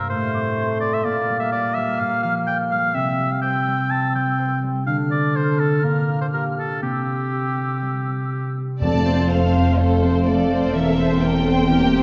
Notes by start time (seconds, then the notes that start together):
Already playing: G2 A#3 A#4
0.09 A2 A3 C5 F6
0.32 C4 D6
0.56 A4 C6
0.80 C4 D5
0.93 E5
1.04 A#2 A#3 D5 F6
1.29 G3
1.40 E5
1.52 D5
1.74 G3 E5
2.00 A#2 F5
2.23 F3 F5
2.47 D5 G5
2.70 G3 F5
2.94 C3 C4 E5 E6
3.20 G3
3.32 F5
3.41 C5 G5
3.67 G3
3.90 C4 A5
4.15 G3 G5
4.39 C5
4.63 G3
4.86 D3 D4 F5 F6
5.11 C4 D5
5.35 A4 C5
5.59 C4 A4
5.84 A#2 A#3 A#4
6.08 D4
6.21 C5
6.33 G4 A#4
6.57 D4 A4
6.82 C3 C4 G4 E6
7.07 C4
7.32 G4
7.57 C4
7.82 G3
8.07 C4
8.32 G4
8.57 C4
8.80 F1 F2 F3 A3 C4 A4 D5 A5
8.98 F4
9.05 C4 C5
9.14 C5
9.28 A3 C4 A4 C5 F5
9.46 A5
9.55 C4 C5
9.62 F5
9.78 A3 C4 A4 C5
9.94 F4
10.03 C4 C5
10.10 C5
10.26 A3 A4 D5 F5
10.42 A5
10.52 C4 C5
10.58 F5
10.74 E1 E2 E3 A#3 C4 A#4 E5
10.91 C4
10.99 C4 C5
11.07 A#4
11.22 A#3 C4 A#4 C5 G5
11.38 G5
11.47 C4 C5
11.54 C5
11.70 E3 A#3 G4 A#4
11.86 C4
11.94 C4 C5